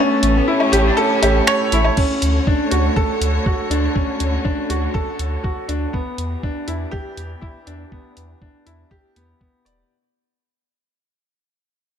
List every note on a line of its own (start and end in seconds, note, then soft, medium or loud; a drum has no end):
0.00 1.97 A2 loud
0.00 0.38 A3 medium
0.00 0.78 B3 medium
0.00 0.22 C#4 medium
0.00 0.78 A4 medium
0.05 5.94 A3 medium
0.23 0.41 A1 loud
0.23 closed hi-hat medium
0.36 0.50 B3 medium
0.36 1.97 G4 medium
0.46 0.88 C#4 medium
0.46 0.71 E4 medium
0.46 5.93 C#5 medium
0.60 low woodblock medium
0.72 0.91 A1 medium
0.72 0.96 G4 medium
0.72 closed hi-hat medium
0.87 0.99 D4 medium
0.97 1.69 C#4 loud
0.97 1.21 A4 loud
1.22 1.41 A1 medium
1.22 1.37 G4 medium
1.22 closed hi-hat medium
1.22 low woodblock medium
1.47 1.71 C#5 loud
1.47 finger snap medium
1.72 1.90 A1 medium
1.72 1.87 E4 medium
1.72 closed hi-hat medium
1.85 low woodblock medium
1.97 5.94 D3 medium
1.97 2.21 C#4 medium
1.97 kick loud
1.97 crash medium
2.12 5.94 F#4 medium
2.22 2.40 D2 loud
2.22 closed hi-hat medium
2.47 2.70 D4 medium
2.47 kick loud
2.71 2.89 D2 medium
2.71 2.95 F#4 medium
2.71 closed hi-hat medium
2.96 3.20 A4 medium
2.96 kick loud
3.21 3.39 D2 medium
3.21 closed hi-hat medium
3.46 3.60 F#4 medium
3.46 kick loud
3.70 3.88 D2 medium
3.70 3.94 D4 medium
3.70 closed hi-hat medium
3.95 4.19 C#4 medium
3.95 kick loud
4.20 4.38 D2 medium
4.20 closed hi-hat medium
4.45 4.68 D4 medium
4.45 kick loud
4.70 4.88 D2 medium
4.70 4.93 F#4 medium
4.70 closed hi-hat medium
4.94 5.18 A4 medium
4.94 kick loud
5.19 5.37 D2 medium
5.19 closed hi-hat medium
5.44 5.58 F#4 medium
5.44 kick loud
5.68 5.87 D2 loud
5.68 5.92 D4 medium
5.68 closed hi-hat medium
5.93 9.91 E3 medium
5.93 6.17 B3 medium
5.93 kick loud
6.01 9.90 G4 medium
6.13 9.90 B3 medium
6.18 6.36 E2 medium
6.18 closed hi-hat medium
6.35 9.90 D5 medium
6.43 6.67 D4 medium
6.43 kick loud
6.68 6.86 E2 medium
6.68 6.91 E4 medium
6.68 closed hi-hat medium
6.91 7.16 G4 medium
6.91 kick medium
7.17 7.35 E2 medium
7.17 closed hi-hat medium
7.41 7.56 E4 medium
7.41 kick loud
7.67 7.85 E2 medium
7.67 7.90 D4 medium
7.67 closed hi-hat medium
7.92 8.16 B3 medium
7.92 kick medium
8.17 8.35 E2 medium
8.17 closed hi-hat medium
8.42 8.65 D4 medium
8.42 kick loud
8.66 8.84 E2 medium
8.66 8.90 E4 medium
8.66 closed hi-hat medium
8.91 9.15 G4 medium
8.91 kick medium
9.16 9.34 E2 medium
9.16 9.39 B3 medium
9.16 closed hi-hat medium
9.40 9.64 B3 medium
9.40 kick loud
9.65 9.83 E1 medium
9.65 9.89 D5 medium
9.65 closed hi-hat medium